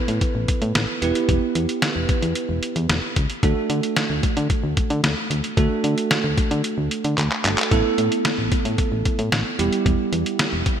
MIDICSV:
0, 0, Header, 1, 4, 480
1, 0, Start_track
1, 0, Tempo, 535714
1, 1153, Time_signature, 4, 2, 24, 8
1, 9677, End_track
2, 0, Start_track
2, 0, Title_t, "Tine electric piano"
2, 0, Program_c, 0, 4
2, 0, Note_on_c, 0, 59, 73
2, 0, Note_on_c, 0, 64, 65
2, 0, Note_on_c, 0, 69, 65
2, 0, Note_on_c, 0, 71, 80
2, 880, Note_off_c, 0, 59, 0
2, 880, Note_off_c, 0, 64, 0
2, 880, Note_off_c, 0, 69, 0
2, 880, Note_off_c, 0, 71, 0
2, 913, Note_on_c, 0, 59, 73
2, 913, Note_on_c, 0, 64, 67
2, 913, Note_on_c, 0, 67, 70
2, 914, Note_on_c, 0, 71, 83
2, 2797, Note_off_c, 0, 59, 0
2, 2797, Note_off_c, 0, 64, 0
2, 2797, Note_off_c, 0, 67, 0
2, 2797, Note_off_c, 0, 71, 0
2, 3074, Note_on_c, 0, 57, 74
2, 3074, Note_on_c, 0, 62, 67
2, 3074, Note_on_c, 0, 66, 68
2, 3074, Note_on_c, 0, 69, 80
2, 4957, Note_off_c, 0, 57, 0
2, 4958, Note_off_c, 0, 62, 0
2, 4958, Note_off_c, 0, 66, 0
2, 4958, Note_off_c, 0, 69, 0
2, 4992, Note_on_c, 0, 57, 72
2, 4992, Note_on_c, 0, 62, 64
2, 4992, Note_on_c, 0, 69, 80
2, 4993, Note_on_c, 0, 66, 67
2, 6639, Note_off_c, 0, 57, 0
2, 6639, Note_off_c, 0, 62, 0
2, 6639, Note_off_c, 0, 66, 0
2, 6639, Note_off_c, 0, 69, 0
2, 6674, Note_on_c, 0, 57, 55
2, 6674, Note_on_c, 0, 62, 51
2, 6674, Note_on_c, 0, 66, 49
2, 6674, Note_on_c, 0, 69, 61
2, 6901, Note_off_c, 0, 57, 0
2, 6901, Note_off_c, 0, 69, 0
2, 6912, Note_on_c, 0, 57, 71
2, 6912, Note_on_c, 0, 59, 66
2, 6912, Note_on_c, 0, 64, 68
2, 6912, Note_on_c, 0, 69, 77
2, 6913, Note_off_c, 0, 62, 0
2, 6914, Note_off_c, 0, 66, 0
2, 8559, Note_off_c, 0, 57, 0
2, 8559, Note_off_c, 0, 59, 0
2, 8559, Note_off_c, 0, 64, 0
2, 8559, Note_off_c, 0, 69, 0
2, 8593, Note_on_c, 0, 55, 76
2, 8593, Note_on_c, 0, 59, 66
2, 8593, Note_on_c, 0, 64, 69
2, 8593, Note_on_c, 0, 67, 82
2, 9677, Note_off_c, 0, 55, 0
2, 9677, Note_off_c, 0, 59, 0
2, 9677, Note_off_c, 0, 64, 0
2, 9677, Note_off_c, 0, 67, 0
2, 9677, End_track
3, 0, Start_track
3, 0, Title_t, "FM bass"
3, 0, Program_c, 1, 39
3, 73, Note_on_c, 1, 45, 92
3, 172, Note_off_c, 1, 45, 0
3, 314, Note_on_c, 1, 33, 93
3, 412, Note_off_c, 1, 33, 0
3, 553, Note_on_c, 1, 45, 101
3, 652, Note_off_c, 1, 45, 0
3, 673, Note_on_c, 1, 33, 100
3, 772, Note_off_c, 1, 33, 0
3, 914, Note_on_c, 1, 28, 92
3, 1012, Note_off_c, 1, 28, 0
3, 1154, Note_on_c, 1, 28, 101
3, 1252, Note_off_c, 1, 28, 0
3, 1393, Note_on_c, 1, 40, 95
3, 1492, Note_off_c, 1, 40, 0
3, 1754, Note_on_c, 1, 28, 88
3, 1852, Note_off_c, 1, 28, 0
3, 1993, Note_on_c, 1, 40, 98
3, 2092, Note_off_c, 1, 40, 0
3, 2232, Note_on_c, 1, 28, 92
3, 2331, Note_off_c, 1, 28, 0
3, 2472, Note_on_c, 1, 40, 104
3, 2571, Note_off_c, 1, 40, 0
3, 2592, Note_on_c, 1, 28, 99
3, 2691, Note_off_c, 1, 28, 0
3, 2836, Note_on_c, 1, 37, 82
3, 2934, Note_off_c, 1, 37, 0
3, 3074, Note_on_c, 1, 38, 105
3, 3172, Note_off_c, 1, 38, 0
3, 3313, Note_on_c, 1, 50, 98
3, 3412, Note_off_c, 1, 50, 0
3, 3673, Note_on_c, 1, 38, 89
3, 3772, Note_off_c, 1, 38, 0
3, 3914, Note_on_c, 1, 50, 98
3, 4012, Note_off_c, 1, 50, 0
3, 4154, Note_on_c, 1, 38, 97
3, 4252, Note_off_c, 1, 38, 0
3, 4393, Note_on_c, 1, 50, 103
3, 4492, Note_off_c, 1, 50, 0
3, 4513, Note_on_c, 1, 38, 99
3, 4612, Note_off_c, 1, 38, 0
3, 4753, Note_on_c, 1, 38, 103
3, 4851, Note_off_c, 1, 38, 0
3, 4993, Note_on_c, 1, 38, 112
3, 5092, Note_off_c, 1, 38, 0
3, 5233, Note_on_c, 1, 50, 92
3, 5332, Note_off_c, 1, 50, 0
3, 5592, Note_on_c, 1, 38, 98
3, 5691, Note_off_c, 1, 38, 0
3, 5833, Note_on_c, 1, 50, 100
3, 5932, Note_off_c, 1, 50, 0
3, 6073, Note_on_c, 1, 38, 97
3, 6172, Note_off_c, 1, 38, 0
3, 6313, Note_on_c, 1, 50, 89
3, 6412, Note_off_c, 1, 50, 0
3, 6433, Note_on_c, 1, 38, 109
3, 6532, Note_off_c, 1, 38, 0
3, 6672, Note_on_c, 1, 31, 91
3, 6771, Note_off_c, 1, 31, 0
3, 6912, Note_on_c, 1, 33, 101
3, 7011, Note_off_c, 1, 33, 0
3, 7152, Note_on_c, 1, 45, 90
3, 7251, Note_off_c, 1, 45, 0
3, 7513, Note_on_c, 1, 33, 88
3, 7612, Note_off_c, 1, 33, 0
3, 7753, Note_on_c, 1, 45, 96
3, 7852, Note_off_c, 1, 45, 0
3, 7992, Note_on_c, 1, 33, 93
3, 8091, Note_off_c, 1, 33, 0
3, 8233, Note_on_c, 1, 45, 100
3, 8332, Note_off_c, 1, 45, 0
3, 8352, Note_on_c, 1, 33, 101
3, 8451, Note_off_c, 1, 33, 0
3, 8593, Note_on_c, 1, 28, 93
3, 8692, Note_off_c, 1, 28, 0
3, 8833, Note_on_c, 1, 28, 102
3, 8932, Note_off_c, 1, 28, 0
3, 9073, Note_on_c, 1, 40, 94
3, 9172, Note_off_c, 1, 40, 0
3, 9433, Note_on_c, 1, 28, 90
3, 9532, Note_off_c, 1, 28, 0
3, 9677, End_track
4, 0, Start_track
4, 0, Title_t, "Drums"
4, 73, Note_on_c, 9, 42, 57
4, 163, Note_off_c, 9, 42, 0
4, 191, Note_on_c, 9, 36, 97
4, 191, Note_on_c, 9, 42, 73
4, 280, Note_off_c, 9, 36, 0
4, 280, Note_off_c, 9, 42, 0
4, 433, Note_on_c, 9, 42, 78
4, 434, Note_on_c, 9, 36, 87
4, 523, Note_off_c, 9, 42, 0
4, 524, Note_off_c, 9, 36, 0
4, 553, Note_on_c, 9, 42, 49
4, 642, Note_off_c, 9, 42, 0
4, 674, Note_on_c, 9, 38, 102
4, 674, Note_on_c, 9, 42, 65
4, 764, Note_off_c, 9, 38, 0
4, 764, Note_off_c, 9, 42, 0
4, 915, Note_on_c, 9, 42, 75
4, 1005, Note_off_c, 9, 42, 0
4, 1034, Note_on_c, 9, 42, 56
4, 1123, Note_off_c, 9, 42, 0
4, 1153, Note_on_c, 9, 36, 112
4, 1153, Note_on_c, 9, 42, 75
4, 1243, Note_off_c, 9, 36, 0
4, 1243, Note_off_c, 9, 42, 0
4, 1392, Note_on_c, 9, 42, 67
4, 1482, Note_off_c, 9, 42, 0
4, 1514, Note_on_c, 9, 42, 60
4, 1604, Note_off_c, 9, 42, 0
4, 1633, Note_on_c, 9, 38, 114
4, 1636, Note_on_c, 9, 42, 78
4, 1722, Note_off_c, 9, 38, 0
4, 1726, Note_off_c, 9, 42, 0
4, 1872, Note_on_c, 9, 42, 67
4, 1873, Note_on_c, 9, 36, 100
4, 1961, Note_off_c, 9, 42, 0
4, 1962, Note_off_c, 9, 36, 0
4, 1994, Note_on_c, 9, 42, 58
4, 2083, Note_off_c, 9, 42, 0
4, 2110, Note_on_c, 9, 42, 70
4, 2199, Note_off_c, 9, 42, 0
4, 2353, Note_on_c, 9, 42, 76
4, 2443, Note_off_c, 9, 42, 0
4, 2472, Note_on_c, 9, 42, 50
4, 2562, Note_off_c, 9, 42, 0
4, 2594, Note_on_c, 9, 38, 102
4, 2594, Note_on_c, 9, 42, 67
4, 2684, Note_off_c, 9, 38, 0
4, 2684, Note_off_c, 9, 42, 0
4, 2834, Note_on_c, 9, 42, 75
4, 2836, Note_on_c, 9, 36, 80
4, 2924, Note_off_c, 9, 42, 0
4, 2925, Note_off_c, 9, 36, 0
4, 2953, Note_on_c, 9, 42, 55
4, 3043, Note_off_c, 9, 42, 0
4, 3073, Note_on_c, 9, 36, 110
4, 3073, Note_on_c, 9, 42, 73
4, 3163, Note_off_c, 9, 36, 0
4, 3163, Note_off_c, 9, 42, 0
4, 3313, Note_on_c, 9, 42, 68
4, 3402, Note_off_c, 9, 42, 0
4, 3435, Note_on_c, 9, 42, 58
4, 3524, Note_off_c, 9, 42, 0
4, 3553, Note_on_c, 9, 38, 113
4, 3556, Note_on_c, 9, 42, 79
4, 3642, Note_off_c, 9, 38, 0
4, 3646, Note_off_c, 9, 42, 0
4, 3792, Note_on_c, 9, 42, 68
4, 3793, Note_on_c, 9, 36, 98
4, 3882, Note_off_c, 9, 36, 0
4, 3882, Note_off_c, 9, 42, 0
4, 3914, Note_on_c, 9, 42, 59
4, 4003, Note_off_c, 9, 42, 0
4, 4031, Note_on_c, 9, 36, 95
4, 4031, Note_on_c, 9, 42, 71
4, 4120, Note_off_c, 9, 36, 0
4, 4120, Note_off_c, 9, 42, 0
4, 4274, Note_on_c, 9, 42, 74
4, 4275, Note_on_c, 9, 36, 84
4, 4364, Note_off_c, 9, 36, 0
4, 4364, Note_off_c, 9, 42, 0
4, 4393, Note_on_c, 9, 42, 48
4, 4483, Note_off_c, 9, 42, 0
4, 4515, Note_on_c, 9, 38, 103
4, 4515, Note_on_c, 9, 42, 68
4, 4604, Note_off_c, 9, 38, 0
4, 4605, Note_off_c, 9, 42, 0
4, 4756, Note_on_c, 9, 42, 73
4, 4845, Note_off_c, 9, 42, 0
4, 4874, Note_on_c, 9, 42, 56
4, 4964, Note_off_c, 9, 42, 0
4, 4993, Note_on_c, 9, 36, 113
4, 4993, Note_on_c, 9, 42, 76
4, 5083, Note_off_c, 9, 36, 0
4, 5083, Note_off_c, 9, 42, 0
4, 5232, Note_on_c, 9, 42, 65
4, 5322, Note_off_c, 9, 42, 0
4, 5355, Note_on_c, 9, 42, 58
4, 5445, Note_off_c, 9, 42, 0
4, 5473, Note_on_c, 9, 38, 116
4, 5477, Note_on_c, 9, 42, 78
4, 5563, Note_off_c, 9, 38, 0
4, 5566, Note_off_c, 9, 42, 0
4, 5713, Note_on_c, 9, 36, 99
4, 5713, Note_on_c, 9, 42, 71
4, 5802, Note_off_c, 9, 36, 0
4, 5802, Note_off_c, 9, 42, 0
4, 5834, Note_on_c, 9, 42, 56
4, 5924, Note_off_c, 9, 42, 0
4, 5951, Note_on_c, 9, 42, 73
4, 6040, Note_off_c, 9, 42, 0
4, 6193, Note_on_c, 9, 42, 76
4, 6283, Note_off_c, 9, 42, 0
4, 6312, Note_on_c, 9, 42, 49
4, 6402, Note_off_c, 9, 42, 0
4, 6433, Note_on_c, 9, 39, 53
4, 6434, Note_on_c, 9, 42, 68
4, 6523, Note_off_c, 9, 39, 0
4, 6523, Note_off_c, 9, 42, 0
4, 6554, Note_on_c, 9, 39, 59
4, 6643, Note_off_c, 9, 39, 0
4, 6673, Note_on_c, 9, 39, 82
4, 6675, Note_on_c, 9, 42, 77
4, 6763, Note_off_c, 9, 39, 0
4, 6764, Note_off_c, 9, 42, 0
4, 6793, Note_on_c, 9, 39, 82
4, 6793, Note_on_c, 9, 42, 55
4, 6882, Note_off_c, 9, 39, 0
4, 6882, Note_off_c, 9, 42, 0
4, 6912, Note_on_c, 9, 36, 110
4, 6912, Note_on_c, 9, 42, 74
4, 7002, Note_off_c, 9, 36, 0
4, 7002, Note_off_c, 9, 42, 0
4, 7151, Note_on_c, 9, 42, 67
4, 7241, Note_off_c, 9, 42, 0
4, 7274, Note_on_c, 9, 42, 60
4, 7363, Note_off_c, 9, 42, 0
4, 7391, Note_on_c, 9, 38, 113
4, 7395, Note_on_c, 9, 42, 78
4, 7481, Note_off_c, 9, 38, 0
4, 7484, Note_off_c, 9, 42, 0
4, 7631, Note_on_c, 9, 42, 70
4, 7632, Note_on_c, 9, 36, 102
4, 7721, Note_off_c, 9, 36, 0
4, 7721, Note_off_c, 9, 42, 0
4, 7753, Note_on_c, 9, 42, 57
4, 7842, Note_off_c, 9, 42, 0
4, 7869, Note_on_c, 9, 42, 71
4, 7870, Note_on_c, 9, 36, 96
4, 7959, Note_off_c, 9, 36, 0
4, 7959, Note_off_c, 9, 42, 0
4, 8113, Note_on_c, 9, 42, 75
4, 8114, Note_on_c, 9, 36, 88
4, 8203, Note_off_c, 9, 36, 0
4, 8203, Note_off_c, 9, 42, 0
4, 8232, Note_on_c, 9, 42, 49
4, 8322, Note_off_c, 9, 42, 0
4, 8354, Note_on_c, 9, 38, 105
4, 8354, Note_on_c, 9, 42, 65
4, 8443, Note_off_c, 9, 38, 0
4, 8443, Note_off_c, 9, 42, 0
4, 8595, Note_on_c, 9, 42, 76
4, 8685, Note_off_c, 9, 42, 0
4, 8714, Note_on_c, 9, 42, 55
4, 8803, Note_off_c, 9, 42, 0
4, 8833, Note_on_c, 9, 36, 112
4, 8834, Note_on_c, 9, 42, 74
4, 8923, Note_off_c, 9, 36, 0
4, 8924, Note_off_c, 9, 42, 0
4, 9073, Note_on_c, 9, 42, 68
4, 9162, Note_off_c, 9, 42, 0
4, 9195, Note_on_c, 9, 42, 60
4, 9284, Note_off_c, 9, 42, 0
4, 9312, Note_on_c, 9, 38, 116
4, 9316, Note_on_c, 9, 42, 78
4, 9402, Note_off_c, 9, 38, 0
4, 9405, Note_off_c, 9, 42, 0
4, 9551, Note_on_c, 9, 42, 72
4, 9552, Note_on_c, 9, 36, 99
4, 9641, Note_off_c, 9, 42, 0
4, 9642, Note_off_c, 9, 36, 0
4, 9677, End_track
0, 0, End_of_file